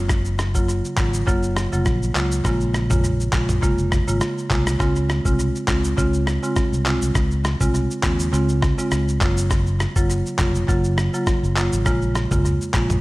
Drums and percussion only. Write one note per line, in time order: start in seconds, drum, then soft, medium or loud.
0.09 kick loud
0.09 cross-stick loud
0.09 shaker medium
0.25 shaker soft
0.39 cross-stick medium
0.39 shaker medium
0.55 kick medium
0.55 shaker medium
0.69 shaker medium
0.85 shaker medium
0.97 kick loud
0.97 cross-stick loud
0.97 clap loud
0.97 shaker medium
1.14 shaker medium
1.27 kick medium
1.27 shaker medium
1.43 shaker soft
1.57 cross-stick loud
1.57 shaker medium
1.73 shaker medium
1.86 kick loud
1.86 cross-stick medium
1.86 shaker medium
2.03 shaker soft
2.15 clap loud
2.15 shaker medium
2.32 shaker medium
2.45 kick loud
2.45 cross-stick loud
2.45 shaker medium
2.61 shaker soft
2.74 cross-stick medium
2.74 shaker medium
2.90 kick medium
2.90 mid tom medium
2.90 shaker medium
3.04 shaker medium
3.20 shaker medium
3.33 kick loud
3.33 cross-stick loud
3.33 clap loud
3.33 shaker medium
3.49 mid tom medium
3.49 shaker medium
3.63 kick medium
3.63 shaker medium
3.78 shaker soft
3.92 kick loud
3.92 cross-stick loud
3.92 shaker medium
4.08 shaker medium
4.21 cross-stick medium
4.21 shaker medium
4.38 shaker soft
4.50 kick loud
4.50 clap medium
4.50 shaker medium
4.67 cross-stick loud
4.67 shaker medium
4.80 kick loud
4.80 cross-stick loud
4.80 shaker medium
4.96 shaker soft
5.10 cross-stick medium
5.10 shaker medium
5.25 kick medium
5.25 shaker medium
5.39 shaker medium
5.56 shaker soft
5.68 kick medium
5.68 cross-stick loud
5.68 clap loud
5.68 shaker medium
5.84 shaker medium
5.98 kick medium
5.98 shaker medium
6.14 shaker soft
6.27 cross-stick loud
6.27 shaker medium
6.43 shaker medium
6.56 kick medium
6.56 cross-stick medium
6.56 shaker medium
6.73 shaker soft
6.86 clap loud
6.86 shaker medium
7.02 shaker medium
7.15 kick loud
7.15 cross-stick loud
7.15 shaker medium
7.31 shaker soft
7.45 cross-stick loud
7.45 shaker medium
7.61 kick medium
7.61 shaker medium
7.75 shaker medium
7.91 shaker soft
8.03 kick loud
8.03 cross-stick loud
8.03 clap loud
8.03 shaker medium
8.20 shaker medium
8.34 shaker medium
8.49 shaker soft
8.62 kick medium
8.62 cross-stick loud
8.62 shaker medium
8.79 shaker medium
8.91 cross-stick medium
8.91 shaker medium
9.09 shaker medium
9.21 kick loud
9.21 clap medium
9.21 shaker soft
9.37 shaker medium
9.51 kick loud
9.51 cross-stick loud
9.51 shaker medium
9.66 shaker soft
9.80 cross-stick medium
9.80 shaker medium
9.96 kick medium
9.96 shaker medium
10.10 shaker medium
10.26 shaker medium
10.39 kick loud
10.39 cross-stick loud
10.39 clap loud
10.39 shaker medium
10.55 shaker medium
10.69 kick medium
10.69 shaker medium
10.84 shaker soft
10.98 cross-stick loud
10.98 shaker medium
11.14 shaker medium
11.27 kick medium
11.27 cross-stick medium
11.27 shaker medium
11.44 shaker soft
11.57 clap loud
11.57 shaker medium
11.73 shaker medium
11.86 kick loud
11.86 cross-stick loud
11.86 shaker medium
12.02 shaker soft
12.15 cross-stick medium
12.15 shaker medium
12.31 kick medium
12.31 mid tom medium
12.31 shaker medium
12.45 shaker medium
12.61 shaker medium
12.74 kick medium
12.74 cross-stick medium
12.74 clap loud
12.74 shaker medium
12.90 mid tom loud
12.90 shaker medium